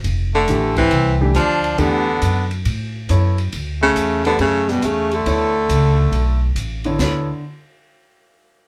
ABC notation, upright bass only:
X:1
M:4/4
L:1/8
Q:"Swing" 1/4=138
K:D
V:1 name="Upright bass" clef=bass
=F,,,2 A,,,2 =C,,2 D,,2 | E,,2 F,,2 A,,2 F,,2 | D,,2 E,,2 F,,2 E,,2 | D,,2 C,,2 B,,,2 A,,,2 |
D,, z6 z |]